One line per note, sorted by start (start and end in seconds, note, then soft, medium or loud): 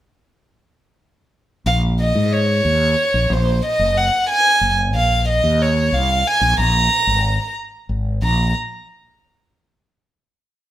1.66 2.11 A#1 medium
1.66 1.81 F5 medium
2.00 2.34 D#5 medium
2.15 2.60 G#2 medium
2.32 3.34 C#5 medium
2.65 2.94 D#2 medium
3.14 3.29 A#1 medium
3.30 3.60 A#1 medium
3.30 3.64 C5 medium
3.65 3.99 D#5 medium
3.79 4.09 F#1 medium
3.97 4.29 F#5 medium
4.29 4.75 G#5 medium
4.61 4.94 F#1 medium
4.94 5.39 A#1 medium
4.94 5.25 F5 medium
5.28 5.63 D#5 medium
5.44 5.89 D#2 medium
5.61 5.95 C#5 medium
5.92 6.22 C2 medium
5.92 6.29 F5 medium
6.27 6.59 G#5 medium
6.41 6.56 A#1 medium
6.58 6.88 A#1 loud
6.58 7.53 A#5 medium
7.07 7.37 G#1 medium
7.89 8.19 G#1 medium
8.22 8.52 A#1 medium
8.22 8.53 A#5 medium